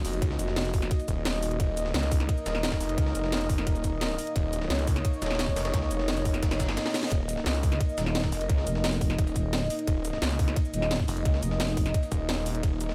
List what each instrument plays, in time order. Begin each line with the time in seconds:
Already playing: analog synth pad A#3 D#4 F#4, ambient pad D#5
0.05 detuned saw bass F1, open hi-hat, cabasa
0.13 closed hi-hat
0.22 detuned saw bass C#2, kick, closed hi-hat, ride
0.31 snare
0.39 detuned saw bass F1, closed hi-hat, ride, cabasa
0.48 snare
0.56 snare, closed hi-hat, ride
0.65 snare, closed hi-hat
0.74 kick, open hi-hat, ride, cabasa
0.82 snare, closed hi-hat, cabasa
0.91 kick, closed hi-hat, ride
1.00 ride, cabasa
1.08 detuned saw bass D#1, kick, closed hi-hat, ride, cabasa
1.25 snare, closed hi-hat, ride
1.43 open hi-hat, ride, cabasa
1.51 closed hi-hat
1.60 detuned saw bass D#1, analog synth pad A#4, kick, closed hi-hat, ride
1.77 closed hi-hat, ride, cabasa
1.86 snare
1.94 detuned saw bass C#2, snare, closed hi-hat, ride
2.03 snare, closed hi-hat
2.12 kick, open hi-hat, ride, cabasa
2.20 snare, closed hi-hat
2.29 kick, closed hi-hat, ride
2.37 cabasa
2.46 detuned saw bass D#1, snare, closed hi-hat, ride, cabasa
2.55 snare
2.63 snare, closed hi-hat, ride
2.72 kick, snare, ride
2.81 detuned saw bass F1, snare, open hi-hat, cabasa
2.89 closed hi-hat, ride
2.98 detuned saw bass C#2, kick, closed hi-hat, ride
3.06 snare
3.15 detuned saw bass F1, closed hi-hat, ride, cabasa
3.24 snare
3.32 snare, closed hi-hat, ride
3.41 snare, closed hi-hat
3.49 kick, open hi-hat, ride, cabasa
3.58 snare, closed hi-hat
3.67 detuned saw bass D#1, kick, closed hi-hat, ride
3.75 ride, cabasa
3.84 detuned saw bass D#1, kick, closed hi-hat, ride, cabasa
4.01 snare, closed hi-hat, ride
4.18 open hi-hat, ride, cabasa
4.27 closed hi-hat
4.36 detuned saw bass D#1, analog synth pad C#5, kick, closed hi-hat, ride
4.53 closed hi-hat, ride, cabasa
4.62 snare
4.70 detuned saw bass C#2, snare, closed hi-hat, ride
4.79 snare, closed hi-hat
4.87 kick, open hi-hat, ride, cabasa
4.96 snare, closed hi-hat
5.05 kick, closed hi-hat, ride
5.13 cabasa
5.22 detuned saw bass D#1, snare, closed hi-hat, ride, cabasa
5.26 snare, ride
5.31 snare, ride
5.35 snare, ride
5.39 snare, closed hi-hat, ride
5.48 kick
5.56 detuned saw bass F1, snare, open hi-hat, ride, cabasa
5.65 snare, closed hi-hat, ride
5.74 detuned saw bass C#2, kick, snare, closed hi-hat, ride
5.82 snare
5.91 detuned saw bass F1, closed hi-hat, ride, cabasa
6.00 snare
6.08 snare, closed hi-hat, ride
6.17 snare, closed hi-hat, cabasa
6.25 kick, open hi-hat, ride, cabasa
6.34 snare, closed hi-hat, cabasa
6.43 detuned saw bass F#1, kick, snare, closed hi-hat, ride, reverse cymbal
6.51 snare, closed hi-hat, ride, cabasa
6.60 kick, snare, closed hi-hat, ride, cabasa
6.68 snare, ride
6.77 snare, closed hi-hat, ride
6.86 snare, ride
6.94 snare, open hi-hat, ride, cabasa
7.03 snare, closed hi-hat
7.12 detuned saw bass D#1, analog synth pad A#4, kick, closed hi-hat, ride
7.29 closed hi-hat, ride, cabasa
7.37 snare
7.46 detuned saw bass C#2, snare, closed hi-hat, ride
7.55 snare, closed hi-hat
7.63 kick, open hi-hat, ride, cabasa
7.72 snare, closed hi-hat
7.81 kick, closed hi-hat, ride
7.89 cabasa
7.98 fm bass D#1, snare, closed hi-hat, ride, cabasa
8.06 snare
8.15 snare, closed hi-hat, ride
8.24 kick, snare, ride
8.32 detuned saw bass F1, snare, open hi-hat, cabasa
8.41 closed hi-hat, ride
8.49 detuned saw bass C#2, kick, closed hi-hat, ride
8.58 snare
8.67 fm bass F1, closed hi-hat, ride, cabasa
8.75 snare
8.84 snare, closed hi-hat, ride
8.93 snare, closed hi-hat
9.01 kick, open hi-hat, ride, cabasa
9.10 snare, closed hi-hat
9.18 detuned saw bass D#1, kick, closed hi-hat, ride
9.27 ride, cabasa
9.36 fm bass D#1, kick, closed hi-hat, ride, cabasa
9.53 snare, closed hi-hat, ride
9.70 open hi-hat, ride, cabasa
9.79 closed hi-hat
9.87 detuned saw bass D#1, analog synth pad D#5, kick, closed hi-hat, ride
10.05 closed hi-hat, ride, cabasa
10.13 snare
10.22 detuned saw bass C#2, snare, closed hi-hat, ride
10.31 snare, closed hi-hat
10.39 kick, open hi-hat, ride, cabasa
10.48 snare, closed hi-hat
10.56 kick, closed hi-hat, ride
10.65 cabasa
10.74 fm bass D#1, closed hi-hat, ride, cabasa
10.82 snare
10.91 snare, closed hi-hat, ride
11.00 kick
11.08 detuned saw bass F1, open hi-hat, cabasa
11.17 closed hi-hat
11.25 detuned saw bass C#2, kick, closed hi-hat, ride
11.34 snare
11.43 fm bass F1, closed hi-hat, ride, cabasa
11.51 snare
11.60 snare, closed hi-hat, ride
11.68 snare, closed hi-hat
11.77 kick, open hi-hat, ride, cabasa
11.86 snare, closed hi-hat, cabasa
11.94 kick, closed hi-hat, ride
12.03 ride, cabasa
12.12 detuned saw bass D#1, kick, closed hi-hat, ride, cabasa
12.29 snare, closed hi-hat, ride
12.46 open hi-hat, ride, cabasa
12.55 closed hi-hat
12.63 detuned saw bass D#1, analog synth pad A#4, kick, closed hi-hat, ride
12.81 closed hi-hat, ride, cabasa
12.89 snare